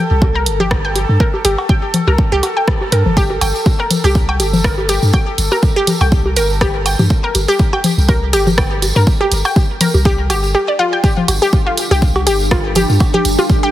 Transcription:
Already playing: A4
0.11 C2
0.22 kick, low bongo
0.35 A#4
0.46 G1, closed hi-hat
0.60 G4, low bongo, low conga
0.71 kick, cross-stick, cowbell
0.85 G5
0.96 closed hi-hat, low bongo
1.09 G2
1.20 A#4, kick
1.34 low bongo
1.45 G1 G4, closed hi-hat
1.58 cowbell
1.69 G5, kick, low bongo
1.94 closed hi-hat, low conga
2.07 C2 A#4, low bongo
2.18 kick
2.32 C2 G4
2.43 closed hi-hat, cowbell, low bongo
2.57 G5
2.68 kick, cross-stick
2.81 low bongo
2.92 G2 A#4, closed hi-hat
3.06 G1, low conga
3.17 G4, kick, tambourine
3.30 low bongo
3.41 G1 G5, closed hi-hat, tambourine, cowbell
3.56 tambourine
3.66 kick, tambourine, low bongo
3.80 A#4
3.91 closed hi-hat, tambourine, low conga
4.04 C2 G4, tambourine, low bongo
4.15 kick, tambourine
4.29 G5, cowbell
4.40 G1, closed hi-hat, tambourine, low bongo
4.53 tambourine, low conga
4.64 A#4, kick, cross-stick, tambourine
4.78 low bongo
4.89 G4, closed hi-hat, tambourine
5.03 G2, tambourine
5.13 G5, kick, tambourine, cowbell, low bongo
5.38 G1, closed hi-hat, tambourine
5.52 A#4, tambourine, low bongo
5.62 kick, tambourine
5.76 G4
5.87 closed hi-hat, tambourine, low bongo, low conga
6.01 C2 G5, tambourine, cowbell
6.12 kick, tambourine
6.26 low bongo
6.36 G1 A#4, closed hi-hat, tambourine
6.50 tambourine
6.61 G4, kick, cross-stick, low bongo
6.86 G5, closed hi-hat, tambourine, cowbell
6.99 G2, tambourine, low bongo, low conga
7.10 kick, tambourine
7.24 A#4
7.35 G1, closed hi-hat, tambourine, low bongo
7.48 G4, tambourine
7.59 kick, tambourine
7.73 G5, cowbell, low bongo
7.84 closed hi-hat, tambourine, low conga
7.98 C2, tambourine
8.09 A#4, kick, tambourine, low bongo
8.33 G1 G4, closed hi-hat, tambourine
8.47 tambourine, low bongo, low conga
8.58 G5, kick, cross-stick, tambourine, cowbell
8.82 closed hi-hat, tambourine, low bongo
8.96 G2 A#4, tambourine
9.07 kick, tambourine
9.21 G4, low bongo
9.32 G1, closed hi-hat, tambourine
9.45 G5, tambourine, cowbell
9.56 kick, tambourine, low bongo
9.81 A#4, closed hi-hat, tambourine, low conga
9.94 C2, tambourine, low bongo
10.05 G4, kick, tambourine
10.30 G1 G4, closed hi-hat, tambourine, cowbell, low bongo
10.44 tambourine
10.55 G4
10.68 D5
10.79 F4
10.93 G5
11.04 D4 G4 A4, kick, tambourine
11.17 low conga
11.28 G1 G4, closed hi-hat, tambourine, cowbell, low bongo
11.42 G4 G5, tambourine
11.53 kick, tambourine, low bongo
11.66 F4
11.78 closed hi-hat, tambourine
11.91 C2 G4, tambourine, low bongo
12.02 kick, tambourine
12.16 cowbell, low bongo
12.27 G1 G4, closed hi-hat, tambourine
12.40 tambourine
12.51 F4, kick, cross-stick, tambourine, low bongo
12.75 G4, closed hi-hat, tambourine, low bongo, low conga
12.89 G2, tambourine
13.00 kick, tambourine, cowbell
13.14 G4, low bongo, low conga
13.25 G1, closed hi-hat, tambourine
13.38 F4, tambourine, low bongo
13.50 kick, tambourine
13.63 G4

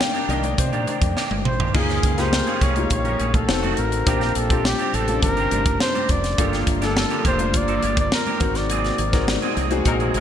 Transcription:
Already playing: C3 D#3 A#3 D4 D5 F5 G5
0.00 snare, muted conga, high conga
0.14 D#3 A#3 D4 G4, closed hi-hat, muted conga
0.29 C2 D#3 A#3 D4 G4 D#5, closed hi-hat, low conga
0.43 D5, muted clean electric guitar stroke, closed hi-hat, high conga
0.58 C3 C5, muted clean electric guitar stroke, kick, closed hi-hat, low conga
0.72 A#2 D#3 A#3 D4 G4, closed hi-hat
0.87 D#3 A#3 D4 G4, closed hi-hat, high conga
1.01 F2, muted clean electric guitar stroke, kick, closed hi-hat, high conga
1.16 D#3 A#3 D4 G4, snare, muted conga
1.30 G1, muted clean electric guitar stroke, high tom, high conga
1.45 A1 C5, muted clean electric guitar stroke, mid tom
1.60 A#1 D#3 A#3 D4 G4, floor tom
1.74 C#2 C#3 F3 G#3 A#3 C#4 D#4 F4 G#4 F5, kick, crash
1.89 snare, closed hi-hat
2.03 C#2, muted clean electric guitar stroke, kick, closed hi-hat
2.17 F3 A#3 C#4 D#4 F4 G4 G#4 C5, snare, closed hi-hat
2.32 muted clean electric guitar stroke, snare, muted conga, high conga
2.47 F3 A#3 C#4 G#4, closed hi-hat, muted conga
2.61 C2 F3 A#3 C#4 G#4 C#5, kick, closed hi-hat, low conga
2.76 A#3 D#4 F4 G4, muted clean electric guitar stroke, closed hi-hat, high conga
2.90 A#1 C#5, muted clean electric guitar stroke, kick, closed hi-hat, low conga
3.05 F3 A#3 C#4 A#4, closed hi-hat, muted conga
3.19 A#1 F3 A#3 C#4 G#4, closed hi-hat, high conga
3.34 A4, muted clean electric guitar stroke, kick, closed hi-hat, high conga
3.48 F1 D#3 F#3 A3 C4 D#4 F#4 A4, muted clean electric guitar stroke, snare
3.63 D#3 A3 C4 F#4, closed hi-hat, muted conga, high conga
3.77 A1 A#4, muted clean electric guitar stroke, closed hi-hat
3.92 muted clean electric guitar stroke, closed hi-hat
4.06 A#1 C3 G3 A#3 C4 D4 F4 G4, kick, closed hi-hat
4.21 snare, closed hi-hat, muted conga
4.35 A#1 A4, muted clean electric guitar stroke, closed hi-hat
4.50 G3 C4 D4 F4 G4, kick, closed hi-hat
4.64 G4, muted clean electric guitar stroke, snare, muted conga, high conga
4.79 G3 C4 D4 G4, closed hi-hat
4.93 A1 G3 C4 D4 G4 A4, closed hi-hat, low conga
5.08 C4 C#4 F4 A5, muted clean electric guitar stroke, closed hi-hat, high conga
5.15 D4
5.22 G1 A#4, muted clean electric guitar stroke, kick, closed hi-hat, muted conga, low conga
5.37 G3 C4 D4 G4, closed hi-hat, muted conga
5.51 G1 G3 C4 D4 G4, closed hi-hat, high conga
5.66 muted clean electric guitar stroke, kick, closed hi-hat, high conga
5.80 C5, muted clean electric guitar stroke, snare
5.94 G3 C4 D4 G4, closed hi-hat, high conga
6.09 F1 D5, muted clean electric guitar stroke, kick, closed hi-hat
6.23 muted clean electric guitar stroke, snare, closed hi-hat
6.38 G1 D3 F3 G3 A#3 D4 F4 G4 A4, kick, closed hi-hat, muted conga
6.53 snare, closed hi-hat, muted conga
6.67 G1, muted clean electric guitar stroke, kick, closed hi-hat
6.81 F3 A3 A#3 D4 F4 G4 A4, snare, closed hi-hat
6.87 A#3
6.96 muted clean electric guitar stroke, snare, high conga
7.10 F3 A#3 D4 G4, closed hi-hat
7.25 F1 F3 A#3 D4 G4 C5, kick, closed hi-hat, low conga
7.39 A#3 D4 F4 C5, muted clean electric guitar stroke, closed hi-hat, high conga
7.54 G1 D5, muted clean electric guitar stroke, kick, closed hi-hat, low conga
7.68 F3 A#3 D4 A4, closed hi-hat
7.83 G1 F3 A#3 D4 G4, closed hi-hat, high conga
7.97 D5, muted clean electric guitar stroke, kick, closed hi-hat, high conga
8.12 A#4, muted clean electric guitar stroke, snare
8.27 F3 A#3 D4 G4, closed hi-hat, high conga
8.40 G#1 C3 G#3 C4 D#4 F#4 A#4, muted clean electric guitar stroke, kick, closed hi-hat
8.55 D5, muted clean electric guitar stroke, snare, closed hi-hat
8.70 F#3 A#3 C4 G#4, closed hi-hat
8.84 snare, closed hi-hat, muted conga
8.98 G#1, muted clean electric guitar stroke, closed hi-hat
9.12 F#3 A#3 C4 D#4 F#4 G#4 A#4, kick, snare, closed hi-hat
9.27 muted clean electric guitar stroke, snare, muted conga, high conga
9.42 F#3 A#3 C4 G#4, closed hi-hat, muted conga
9.57 C2 F#3 A#3 C4 G#4, closed hi-hat, low conga
9.71 C4 D#4 F#4 G#4, muted clean electric guitar stroke, closed hi-hat, high conga
9.85 A#1 F#3 D#4 A#4, muted clean electric guitar stroke, kick, closed hi-hat, muted conga, low conga
10.00 F#3 A#3 C4 G#4, closed hi-hat, muted conga
10.14 G#1 F#3 A#3 C4 D#4 G#4 A#4, closed hi-hat, high conga

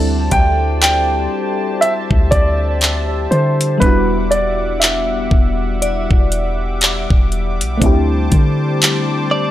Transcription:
Already playing: D2 G3 C4 D4 E4 F#4 G4 A4 C5 D5 E5 A5
0.31 D2 G5, kick, closed hi-hat
0.82 G5, clap, closed hi-hat
1.81 E5, closed hi-hat
2.11 D2, kick
2.31 D2 D5, kick, closed hi-hat
2.81 clap, closed hi-hat
3.31 D3 C5, closed hi-hat
3.61 closed hi-hat
3.78 G3 B3 B4 E5 F#5 D6, kick
3.82 E1 D4 E4, closed hi-hat
3.86 F#4
4.31 D5, closed hi-hat
4.80 E5, clap, closed hi-hat
5.31 E1, kick
5.82 D5, closed hi-hat
6.11 E1, kick
6.32 closed hi-hat
6.81 clap, closed hi-hat
7.10 E1, kick
7.32 closed hi-hat
7.61 B1, closed hi-hat
7.78 A3 C4 D4
7.82 D2 E4 C5 A5, kick, closed hi-hat
7.86 G4
8.32 D3, kick, closed hi-hat
8.82 clap, closed hi-hat
9.31 D5

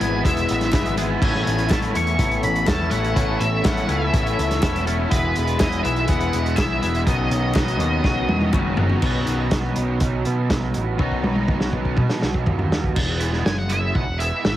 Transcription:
Already playing: G#3 B4 E5 G#5 B5
0.00 G#1 E3 G#3 B3 E4 G#4, closed hi-hat
0.23 E1 E3 G#3 B3 E4 G#4 E5, kick, closed hi-hat
0.37 closed hi-hat
0.49 A1, closed hi-hat
0.61 snare, closed hi-hat
0.71 G#1 E3 G#3 B3 E4 G#4, kick, snare, clap, closed hi-hat
0.85 closed hi-hat
0.96 E3 G#3 B3 E4 G#4, closed hi-hat
1.20 A1 A2 E3 A3 B3 C#4 E4 A4 C#5, kick, crash
1.25 G#5
1.35 snare
1.47 A1, closed hi-hat
1.58 closed hi-hat
1.69 A1 A2 E3 A3 B3 C#4 E4 A4 C#5 A5, kick, snare, clap, closed hi-hat
1.82 closed hi-hat
1.94 E2 A2 E3 A3 B3 C#4 E4 A4 C#5 C#6, closed hi-hat
2.07 closed hi-hat
2.18 A1 A2 E3 A3 B3 C#4 E4 A4 C#5, kick, closed hi-hat
2.31 closed hi-hat
2.43 A1 B5, closed hi-hat
2.55 closed hi-hat
2.66 E2 A2 E3 A3 B3 C#4 E4 A4 C#5 A5, kick, snare, clap, closed hi-hat
2.90 A1 A2 E3 A3 B3 C#4 E4 A4 C#5 F#5, closed hi-hat
3.04 closed hi-hat
3.14 A1 A2 E3 A3 B3 C#4 E4 A4 C#5, kick, closed hi-hat
3.40 A1 E5, closed hi-hat
3.63 A1 A2 E3 A3 B3 C#4 E4 A4 C#5 F#5, kick, snare, clap, closed hi-hat
3.77 closed hi-hat
3.87 C#2 A2 E3 A3 B3 C#4 E4 A4 C#5, closed hi-hat
3.92 E5
4.12 A1 A2 E3 A3 B3 C#4 E4 A4 C#5, kick, closed hi-hat
4.27 closed hi-hat
4.39 C#2, closed hi-hat
4.51 snare, closed hi-hat
4.61 E1 A2 E3 A3 B3 C#4 E4 A4 C#5, kick, snare, clap, closed hi-hat
4.76 closed hi-hat
4.85 A2 E3 A3 B3 C#4 E4 A4 C#5, closed hi-hat
5.09 E1 E3 G#3 B3 E4 G#4 B4, kick, closed hi-hat
5.13 G#4 E5
5.36 E1, closed hi-hat
5.47 closed hi-hat
5.58 E1 E3 G#3 B3 E4 G#4 D#5, kick, snare, clap, closed hi-hat
5.72 closed hi-hat
5.82 B1 E3 G#3 B3 E4 G#4 E5, closed hi-hat
5.96 closed hi-hat
6.08 E1 E3 G#3 B3 E4 G#4 F#5, kick, closed hi-hat
6.20 closed hi-hat
6.33 E1, closed hi-hat
6.46 closed hi-hat
6.55 B1 E3 G#3 B3 E4 G#4 E5, kick, snare, clap, closed hi-hat
6.81 E1 E3 G#3 B3 E4 G#4, closed hi-hat
6.95 closed hi-hat
7.06 B1 B2 D#3 F#3 B3 C#4 D#4 F#4 C#5 D#5, kick, closed hi-hat
7.30 B1, closed hi-hat
7.53 B1 B2 D#3 F#3 B3 C#4 D#4 F#4, kick, snare, clap, closed hi-hat
7.68 closed hi-hat
7.78 D#2 B2 D#3 F#3 B3 C#4 D#4 F#4, closed hi-hat
8.02 B1 B2 D#3 F#3 B3 C#4 D#4 F#4, kick, snare
8.28 E2, high tom
8.41 high tom
8.53 F#1 B2 D#3 F#3 B3 C#4 D#4 F#4, kick, clap, mid tom
8.77 B2 D#3 F#3 B3 C#4 D#4 F#4, floor tom
8.90 floor tom
9.01 B1 B2 D#3 F#3 B3 C#4 D#4 F#4, kick, crash
9.27 B1, closed hi-hat
9.51 B1, kick, snare, closed hi-hat
9.76 B1, closed hi-hat
10.00 B1, kick, closed hi-hat
10.25 B2, closed hi-hat
10.50 B1, kick, snare, closed hi-hat
10.74 A1, closed hi-hat
10.98 B1 B2 D#3 F#3 B3 C#4 D#4 F#4, kick
11.12 kick
11.23 B1, high tom
11.36 high tom
11.48 B1, kick, mid tom
11.61 snare
11.73 B1, kick
11.85 kick
11.97 B2, kick, mid tom
12.09 snare
12.22 B1, snare
12.34 kick
12.46 D#2, kick, floor tom
12.59 floor tom
12.72 snare
12.84 kick
12.96 E1 E2, kick, crash
13.19 E3 G#3 B3 E4, closed hi-hat
13.33 snare
13.45 F#1 G#5, snare
13.59 F#5
13.69 E3 G#3 B3 E4 E5, closed hi-hat
13.95 B1 B2 F#5, kick
14.08 E1 E2
14.18 E3 G#3 B3 E4 E5, closed hi-hat
14.44 G#1 G#2, snare

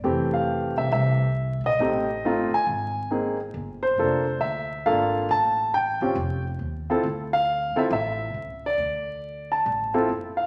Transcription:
0.04 F1 E3 A3 C4 G4
0.33 F5
0.77 C2 E5
0.92 C2 E5
1.64 A#1 D#5
1.79 A1 A3 C4 D#4 G4
2.25 A3 C4 D#4 F4
2.51 G#5, muted upright bass stroke
2.67 G#1
3.11 A#3 C4 D#4 G#4
3.54 G1
3.83 C5
3.98 F1 A#3 D4 F4 A4
4.41 D2 E5
4.86 G#1 A#3 D4 F4 A4 F5
5.29 A1 A5
5.74 G5
6.01 G1 C4 C#4 F4 G4
6.15 F1
6.59 D#2
6.90 C4 E4 F4 A4
7.03 D2
7.33 F5
7.75 C4 E4 F4 A4 E5, muted upright bass stroke
7.90 A1 E5
8.34 C#2
8.66 D5
8.78 D2
9.52 A5
9.66 A1
9.94 C4 E4 F4 A4
10.09 F#1
10.37 F5

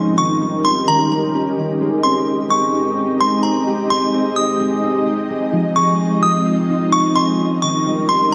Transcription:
Already playing: C#4 D#4 G4 A#4 D#5
0.18 D#3 C#6
0.42 G3
0.65 C6
0.88 D#3 A#5
1.11 G3
1.34 C#4
1.58 D#3
1.81 G#3 C4 D#4
2.03 C4 C6
2.50 G#3 C#6
2.97 G4
3.21 G#3 C6
3.43 C4 A#5
3.67 G4
3.90 G#3 C6
4.14 C4
4.36 D#6
4.60 G#3
4.84 C4
5.06 G4
5.30 G#3
5.52 F3 C4 F4
5.76 G#3 C#6
6.23 F3 D#6
6.69 D#4
6.92 F3 C#6
7.16 G#3 C6
7.39 C#4 G4 A#4
7.62 D#3 C#6
7.86 G3
8.09 C6

